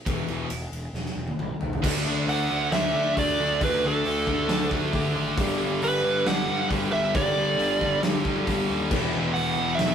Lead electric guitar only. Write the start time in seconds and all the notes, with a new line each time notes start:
2.29 F#5
2.73 E5
3.19 D5
3.64 B4
3.86 A4
5.84 B4
6.27 F#5
6.93 E5
7.16 D5
9.34 F#5
9.75 E5